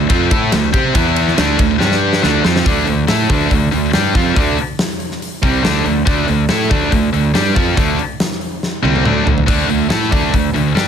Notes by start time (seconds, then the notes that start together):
0.09 F2 F3 C4 F4, kick, ride
0.30 A2 A3 E4 A4, kick, ride
0.51 D2 D3 A3, snare, ride
0.73 C3 C4 G4 C5, kick, ride
0.93 E2 E3 B3 E4, kick, ride
1.16 ride
1.28 snare
1.36 D2 D3 A3 D4, snare, ride
1.59 D2 D3 A3, kick, ride
1.78 G2 G3 D4 G4, snare
1.92 snare
2.13 snare
2.22 D2 D3 A3 D4, snare
2.45 F2 F3 C4 F4, snare
2.56 snare
2.65 D2 D3 A3 D4, kick, open hi-hat
2.86 D2 D3 A3, open hi-hat
3.08 A2 A3 E4 A4, snare, open hi-hat
3.29 D2 D3 A3 D4, kick, open hi-hat
3.51 D2 D3 A3, kick, open hi-hat
3.71 D2 D3 A3, open hi-hat
3.93 G2 G3 D4 G4, snare, open hi-hat
4.15 F2 F3 C4 F4, kick, open hi-hat
4.36 D2 D3 A3 D4, kick, open hi-hat
4.58 open hi-hat
4.79 snare, open hi-hat
5.00 open hi-hat
5.11 snare
5.22 open hi-hat
5.43 C2 C3 G3 C4, kick
5.63 D2 D3 A3 D4, snare, open hi-hat
5.85 D2 D3 A3, open hi-hat
6.05 D2 D3 A3 D4, kick, open hi-hat
6.26 D2 D3 A3, open hi-hat
6.49 A2 A3 E4 A4, snare, open hi-hat
6.70 D2 D3 A3 D4, kick, open hi-hat
6.91 D2 D3 A3, kick, open hi-hat
7.13 D2 D3 A3, open hi-hat
7.34 G2 G3 D4 G4, snare, open hi-hat
7.55 F2 F3 C4 F4, kick, open hi-hat
7.77 D2 D3 A3 D4, kick, open hi-hat
7.99 open hi-hat
8.20 snare, open hi-hat
8.32 snare
8.41 open hi-hat
8.63 snare
8.83 C2 C3 G3 C4, high tom
8.96 high tom
9.05 D2 D3 A3 D4, mid tom
9.25 D2 D3 A3, floor tom
9.38 floor tom
9.46 D2 D3 A3 D4, kick, open hi-hat, crash
9.69 D2 D3 A3, open hi-hat
9.90 A2 A3 E4 A4, snare, open hi-hat
10.02 snare
10.11 D2 D3 A3 D4, kick, open hi-hat
10.32 D2 D3 A3, kick, open hi-hat
10.54 D2 D3 A3, open hi-hat
10.75 G2 G3 D4 G4, snare, open hi-hat